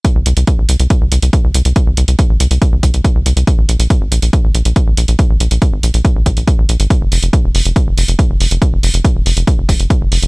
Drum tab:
HH |x-xxx-xxx-xxx-xx|x-xxx-xxx-xxx-xx|x-xxx-xxx-xxx-xx|x-xxx-xxx-xxx-xx|
BD |o---o---o---o---|o---o---o-o-o---|o---o---o---o---|o---o---o-o-o---|

HH |x-oxx-oxx-oxx-ox|x-oxx-oxx-oxx-ox|
BD |o---o---o---o---|o---o---o-o-o---|